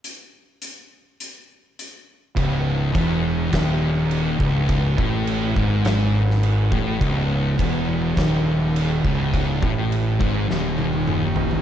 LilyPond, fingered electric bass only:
\new Staff \with { instrumentName = "Fingered electric bass" } { \clef bass \time 4/4 \key cis \minor \tempo 4 = 103 r1 | cis,,4 e,,4 dis,,4. cis,,8~ | cis,,8 a,,4 gis,,2 a,,8 | cis,,4 e,,4 dis,,4. cis,,8~ |
cis,,8 a,,4 gis,,8 dis,,2 | }